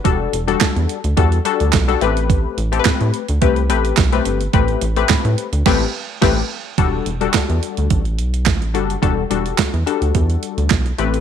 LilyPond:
<<
  \new Staff \with { instrumentName = "Analog polysynth" } { \time 4/4 \key e \minor \tempo 4 = 107 <g d' fis' a'>8 r16 <g d' fis' a'>4 r16 <g d' fis' a'>16 r16 <g d' fis' a'>8 r16 <g d' fis' a'>16 <a c' g' b'>8~ | <a c' g' b'>8 r16 <a c' g' a' b'>4 r16 <a c' g' b'>16 r16 <a c' g' b'>8 r16 <a c' g' b'>8 r16 | <a c' g' b'>8 r16 <a c' g' b'>4 r16 <a c' g' b'>8 r8 <a c' g' b'>8 r8 | <g d' fis' a'>8 r16 <g d' fis' a'>4. r4 r16 <g d' fis' a'>16 r16 |
<g d' fis' a'>16 r16 <g d' fis' a'>8. r16 <g d' fis' a'>4. r8 <a c' g' b'>8 | }
  \new Staff \with { instrumentName = "Analog synth bass" } { \clef bass \time 4/4 \key e \minor e,,8 e,,8 e,16 e,16 r16 d,16 e,8 r16 d,16 b,,8 a,,8~ | a,,8 a,,8 a,16 a,16 r16 d,16 c,8 a,,8 b,,8 g,,8 | a,,8 a,,8 a,16 a,16 r16 d,16 a,,8 r8 a,,8 r8 | e,,8 e,,8 e,16 e,16 r16 d,16 a,,8 b,,8 a,,8 fis,,8 |
e,,8 e,,8 e,16 e,16 r16 d,16 e,8 r16 d,16 b,,8 a,,8 | }
  \new DrumStaff \with { instrumentName = "Drums" } \drummode { \time 4/4 <hh bd>8 hh16 hh16 <hc hh bd sn>16 hh16 hh16 hh16 <hh bd>16 hh16 hh16 hh16 <hc hh bd sn>16 hh16 hh16 hh16 | <hh bd>8 hh16 hh16 <hc hh bd sn>16 hh16 hh16 hh16 <hh bd>16 hh16 hh16 hh16 <hc hh bd sn>16 hh16 hh16 hh16 | <hh bd>16 hh16 hh16 hh16 <hc hh bd sn>16 hh16 hh16 hh16 <cymc bd sn>4 <cymc bd sn>4 | <hh bd>8 hh16 hh16 <hc hh bd sn>16 hh16 hh16 hh16 <hh bd>16 hh16 hh16 hh16 <hc hh bd sn>16 hh16 hh16 hh16 |
<hh bd>8 hh16 hh16 <hc hh bd sn>16 hh16 hh16 hh16 <hh bd>16 hh16 hh16 hh16 <hc hh bd sn>16 hh16 hh16 hh16 | }
>>